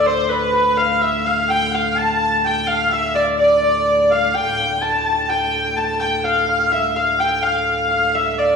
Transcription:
<<
  \new Staff \with { instrumentName = "Hurdy-gurdy" } { \time 3/4 \key d \dorian \tempo 4 = 126 c''8 b'8 b'8 f''8 e''8 f''8 | g''8 f''8 a''4 g''8 f''8 | e''8 d''8 d''4. f''8 | g''4 a''4 g''4 |
a''8 g''8 f''8 f''8 e''8 f''8 | g''8 f''4 f''8 e''8 d''8 | }
  \new Staff \with { instrumentName = "Shawm" } { \time 3/4 \key d \dorian c''8 b'8 b'8 f''8 e''8 f''8 | g''8 f''8 a''8 a''8 g''8 f''8 | e''8 d''8 d''4 r8 f''8 | g''4 a''8 a''8 g''4 |
a''8 g''8 f''8 f''8 e''8 f''8 | g''8 f''4 f''8 e''8 d''8 | }
  \new Staff \with { instrumentName = "Pipe organ" } { \clef bass \time 3/4 \key d \dorian <d, a,>2.~ | <d, a,>2.~ | <d, a,>2. | <d, a,>2.~ |
<d, a,>2.~ | <d, a,>2. | }
>>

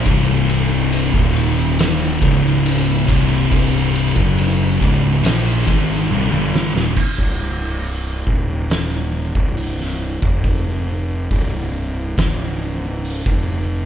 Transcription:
<<
  \new Staff \with { instrumentName = "Distorted electric guitar" } { \clef bass \time 4/4 \key c \minor \tempo 4 = 69 <c, g, c>4~ <c, g, c>16 <ees, bes, ees>4~ <ees, bes, ees>16 <des, aes, des>4 <c, g, c>8~ | <c, g, c>8. <fis, des fis>8. <des, aes, des>8 <bes, f bes>8 <aes, ees aes>8 <c, g,>16 <g, d g>8 <ees, bes,>16 | r1 | r1 | }
  \new Staff \with { instrumentName = "Distorted electric guitar" } { \clef bass \time 4/4 \key c \minor <c, g, c>4~ <c, g, c>16 <ees, bes, ees>4~ <ees, bes, ees>16 <des, aes, des>4 <c, g, c>8~ | <c, g, c>8. <fis, des fis>8. <des, aes, des>8 <bes, f bes>8 <aes, ees aes>8 <c, g,>16 <g, d g>8 <ees, bes,>16 | r1 | r1 | }
  \new Staff \with { instrumentName = "Picked electric bass" } { \clef bass \time 4/4 \key c \minor c,,4~ c,,16 ees,,4~ ees,,16 des,,4 c,,8~ | c,,8. fis,,8. des,,8 bes,,8 aes,,8 c,,16 g,,8 ees,,16 | r16 c,,4~ c,,16 ees,,4~ ees,,16 c,,4 f,,16~ | f,,4 c,,4 des,,4~ des,,16 f,,8. | }
  \new DrumStaff \with { instrumentName = "Drums" } \drummode { \time 4/4 <bd cymr>8 cymr8 cymr16 bd16 cymr8 <cymr sn>8 <bd cymr>16 sn16 cymr8 <bd cymr>8 | <bd cymr>8 cymr16 bd16 cymr8 <bd cymr>8 <cymr sn>8 <bd cymr>16 sn16 tommh16 toml16 sn16 sn16 | <cymc bd>16 bd8. hho8 bd8 <hho sn>8. bd16 hho16 sn8 bd16 | <hho bd>4 <hho bd>4 <hho bd sn>4 hho16 bd8. | }
>>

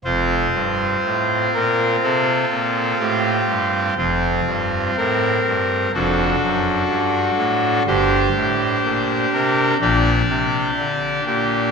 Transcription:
<<
  \new Staff \with { instrumentName = "Pipe organ" } { \time 4/4 \key f \major \tempo 4 = 62 << { c''4. bes'8 a'4 g'4 | f'4 bes'4 a'2 | c''4. bes'8 d''4. g'8 | } \\ { <c' f'>1 | c'2 <d' fis'>2 | <d' g'>2 <d' g'>2 | } >> }
  \new Staff \with { instrumentName = "Pipe organ" } { \clef bass \time 4/4 \key f \major <f,, f,>8 g,8 a,8 bes,8 c8 bes,8 a,8 g,8 | <f,, f,>8 g,8 a,8 g,8 <f,, f,>8 fis,8 g,8 a,8 | <g,, g,>8 a,8 bes,8 c8 <bes,, bes,>8 c8 d8 bes,8 | }
>>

